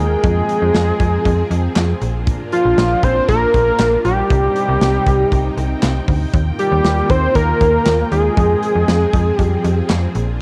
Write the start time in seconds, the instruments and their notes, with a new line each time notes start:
Already playing: string machine D#3 A#3 F4 G5
0.00 fm bass D#2, analog synth lead G#4
0.23 fm bass F2, string machine F3 C4 G#4, kick, closed hi-hat
0.49 closed hi-hat
0.62 fm bass F2
0.74 fm bass F2, snare, closed hi-hat
1.00 fm bass F2, kick, closed hi-hat
1.25 fm bass F2, kick, closed hi-hat
1.51 fm bass F2, closed hi-hat
1.76 fm bass F2, snare, clap, closed hi-hat
2.01 fm bass A#1, string machine A#3 D4 F4, closed hi-hat
2.27 kick, closed hi-hat
2.52 analog synth lead F4, closed hi-hat
2.65 fm bass A#1
2.78 fm bass A#1, snare, closed hi-hat
3.03 fm bass A#1, analog synth lead C5, kick, closed hi-hat
3.29 fm bass A#1, analog synth lead A#4, kick, closed hi-hat
3.54 fm bass A#1, kick, closed hi-hat
3.79 fm bass A#1, snare, clap, closed hi-hat
4.05 fm bass A#1, analog synth lead G4, closed hi-hat
4.30 fm bass C2, string machine C3 C4 D#4 G5, kick, closed hi-hat
4.56 closed hi-hat
4.69 fm bass C2
4.81 fm bass C2, snare, closed hi-hat
5.07 fm bass C2, kick, closed hi-hat
5.32 fm bass C2, kick, closed hi-hat
5.57 fm bass C2, closed hi-hat
5.83 fm bass C2, snare, clap, closed hi-hat
6.08 fm bass D2, kick, open hi-hat
6.34 fm bass D#2, string machine D#3 A#3 F4, kick, closed hi-hat
6.59 analog synth lead G4, closed hi-hat
6.72 fm bass D#2
6.85 fm bass D#2, snare, closed hi-hat
7.10 fm bass D#2, analog synth lead C5, kick, closed hi-hat
7.35 fm bass D#2, analog synth lead A#4, kick, closed hi-hat
7.61 fm bass D#2, kick, closed hi-hat
7.86 fm bass D#2, snare, clap, closed hi-hat
8.12 fm bass D#2, analog synth lead G#4, closed hi-hat
8.37 fm bass F2, string machine F3 C4 G#4, kick, closed hi-hat
8.62 closed hi-hat
8.75 fm bass F2
8.88 fm bass F2, snare, closed hi-hat
9.13 fm bass F2, kick, closed hi-hat
9.39 fm bass F2, analog synth lead G4, kick, closed hi-hat
9.64 fm bass F2, closed hi-hat
9.90 fm bass F2, snare, clap, closed hi-hat
10.15 fm bass A#1, string machine A#3 D4 F4, closed hi-hat